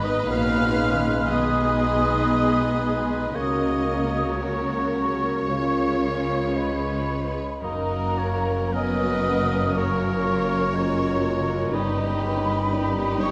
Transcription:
Already playing: G#1 G#2 G#3 B3 D#4 G#4 B4
0.03 D#5 D#6
0.26 A#1 A#2 C#4 F#4 B4 F5 F6
0.60 D#4
0.78 G#4
0.93 D#3
1.26 B1 B2 G#3 B3 D#4 G#4 D#5 D#6
1.60 B3
1.80 B3
1.94 G#4
2.29 B4
2.64 D#4
2.99 G#3
3.34 C#2 C#3 A#3 F#4 A#4 C#5 D#5 D#6
3.70 A#3
4.07 C#5
4.42 F#3 A#3 F#4 A#4 C#5 C#6
4.78 F#4
5.14 C#4
5.49 C#2 C#3 G#3 A#3 F4 C#5
5.87 G#3
6.21 C#5
6.56 G#3 F4 G#4 B4 B5
6.90 F4
7.26 C#4
7.61 F#1 F#2 A#3 C#4 D#4 F#4 A#4 D#5 A#5
7.99 A#3
8.17 C#4 C#5
8.37 C#5
8.72 B3 C#4 F#4 A#4 B4 D#5 D#6
9.07 C#4
9.26 A#3 B3
9.41 C#3
9.74 A#3 C#4 F#4 A#4 C#5 C#6
10.07 C#3
10.23 F4
10.41 C#5
10.73 G#3 C#4 F4 F#4 A#4 C#5
11.07 C#4
11.22 A#3 C#5
11.39 C#3
11.71 G1 G2 G3 C#4 D#4 G4 B4 D#5 B5
12.04 A#3
12.21 G#3 C#4
12.37 C#5
12.69 G3 D#4 G4 A#4
12.74 D#5
13.03 D#4
13.19 C#5 C#6

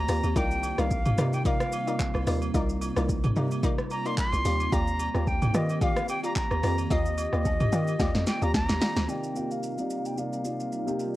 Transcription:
Already playing: D#3 A#3 C4 F4 G4 A#5
0.09 D#2 F4 G4 D5, cross-stick, open hi-hat, shaker
0.24 D#2, high agogo, shaker
0.36 C2 C3 G3 D#4 F4 A#4 D5 G5, kick, shaker
0.51 shaker
0.63 high agogo, shaker
0.78 C2 D#4 F4 A#4 D5 F5, cross-stick, shaker
0.91 kick, shaker
1.05 mid tom, high agogo, shaker
1.18 C3 D#4 F4 A#4 D5, cross-stick, shaker
1.33 G5, high agogo, shaker
1.45 D#4 F4 A#4 D5 F5, kick, shaker
1.60 cross-stick, shaker
1.72 high agogo, shaker
1.87 D#4 F4 A#4 D5, shaker
2.00 kick, clap, low woodblock, shaker
2.14 C2, cross-stick, high agogo, shaker
2.27 D#2 D#4 F4 A#4 D5, cross-stick, open hi-hat, shaker
2.42 high agogo, shaker
2.54 C2 D#4 F4 A#4 D5, kick, shaker
2.69 shaker
2.81 high agogo, shaker
2.96 C2 D#4 F4 A#4 D5, cross-stick, shaker
3.09 kick, shaker
3.24 mid tom, high agogo, shaker
3.36 C3 D#4 F4 A#4 D5, shaker
3.51 high agogo, shaker
3.63 D#4 F4 A#4 D5, kick, shaker
3.78 cross-stick, shaker
3.90 A#5, high agogo, shaker
4.05 D#4 F4 A#4 D5 C6, shaker
4.18 C6, kick, clap, low woodblock, shaker
4.32 C2, high agogo, shaker
4.45 D#2 D#3 F4 G4 D5, open hi-hat, shaker
4.60 high agogo, shaker
4.72 D#2 F4 G4 D5 A#5, kick, shaker
4.87 shaker
5.00 high agogo, shaker
5.14 D#2 F4 G4 D5, cross-stick, shaker
5.27 G5, kick, shaker
5.42 mid tom, high agogo, shaker
5.54 D#3 F4 G4 D5 D#5, cross-stick, shaker
5.69 high agogo, shaker
5.81 F4 G4 D5 F5, kick, shaker
5.97 cross-stick, shaker
6.09 G5, high agogo, shaker
6.24 F4 G4 D5 A#5, shaker
6.36 A#5, kick, clap, low woodblock, shaker
6.51 D#2, cross-stick, high agogo, shaker
6.63 F2 F4 G4 D5, cross-stick, open hi-hat, shaker
6.78 high agogo, shaker
6.90 D#2 F4 G4 D#5, kick, shaker
7.06 shaker
7.18 high agogo, shaker
7.33 D#2 F4 G4 D5, cross-stick, shaker
7.45 kick, low woodblock, shaker
7.60 mid tom, high agogo, shaker
7.72 D#3 F4 G4 D5, shaker
7.87 high agogo, shaker
7.99 D#2 F4 G4 D5, kick, snare, shaker
8.15 F2, snare, shaker
8.27 G5, snare, high agogo, shaker
8.42 D#2 F4 G4 D5 A#5, shaker
8.54 D2 A#5, kick, snare, low woodblock, shaker
8.69 D#2, snare, high agogo, shaker
8.81 F4 G4 D5, snare, open hi-hat, shaker
8.96 D2, snare, high agogo, shaker
9.08 C3 G3 A#3 D#4 F4 D5 G5, shaker
9.24 shaker
9.35 C3 A#3 D#4 F4 F5, shaker
9.51 F5, shaker
9.63 shaker
9.77 C3 A#3 D#4 F4 D5, shaker
9.90 shaker
10.06 G5, shaker
10.17 C3 A#3 D#4 F4 D5 F5, shaker
10.33 shaker
10.44 C3 A#3 D#4 F4 D5, shaker
10.60 shaker
10.73 shaker
10.86 C3 A#3 D#4 F4 G4, shaker
11.00 shaker

